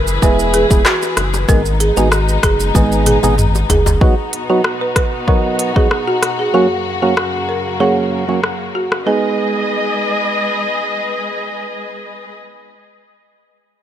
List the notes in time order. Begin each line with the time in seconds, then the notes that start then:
Already playing: F#1 E3 E4 G#4 B4
0.07 shaker
0.22 E1 G#3 B3 E4 G#4 B4, kick, high bongo, shaker
0.39 shaker
0.54 G#4, closed hi-hat, shaker
0.70 E1 G#3 B3 E4 G#4, kick, high bongo, shaker
0.86 F#4, cross-stick, clap, shaker
1.02 high bongo, shaker
1.17 F#1, cross-stick, closed hi-hat, low bongo, shaker
1.34 high bongo, shaker
1.48 G#1 G#3 B3 D#4 G#4 A#4, kick, high bongo, shaker
1.65 shaker
1.80 G#4, closed hi-hat, shaker
1.97 G#1 G#3 B3 D#4 F#4 G#4, high bongo, shaker
2.12 cross-stick, shaker
2.29 shaker
2.43 F#1 G#4, kick, cross-stick, closed hi-hat, shaker
2.60 shaker
2.75 G#1 G#3 B3 D#4 G#4 B4, kick, high tom, high bongo, shaker
2.92 shaker
3.06 G#4, closed hi-hat, mid tom, shaker
3.23 G#1 G#3 B3 D#4 G#4, mid tom, high bongo, shaker
3.38 mid tom, shaker
3.55 high bongo, shaker
3.70 F#1 G#4, closed hi-hat, floor tom, low bongo, shaker
3.86 floor tom, high bongo, shaker
4.01 B2 F#3 B3 D#4 F#4, kick
4.33 closed hi-hat
4.50 F#3 B3 D#4 F#4
4.64 cross-stick
4.81 B4
4.96 B4, kick, cross-stick, closed hi-hat
5.27 F#3 B3 D#4 F#4 A#4, kick
5.59 closed hi-hat
5.76 F#3 B3 D#4 F#4 G#4, kick
5.91 cross-stick
6.08 F#4
6.23 cross-stick, closed hi-hat
6.39 G#4
6.54 F#2 C#3 F#3 A#3 C#4 F#4
7.02 F#3 A#3 C#4 F#4
7.17 cross-stick
7.49 A#4
7.80 F#3 A#3 C#4 F#4 G#4
8.28 F#3 A#3 C#4 F#4
8.44 cross-stick
8.75 F#4
8.92 cross-stick
9.06 G#3 B3 D#4 G#4 B4 D#5